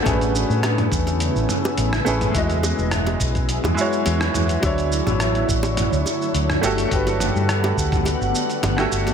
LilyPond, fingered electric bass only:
\new Staff \with { instrumentName = "Fingered electric bass" } { \clef bass \time 4/4 \key a \major \tempo 4 = 105 a,,8. a,8. e,8. a,,16 r8 a,,16 r16 a,,16 r16 | e,8. e,,8. b,,8. e,16 r8 e,16 r16 e,16 r16 | d,8. a,,8. a,,8. d,16 r8 d,16 r16 g,,16 r16 | g,,8. g,8. d,8. g,,16 r8 g,,16 r16 g,,16 r16 | }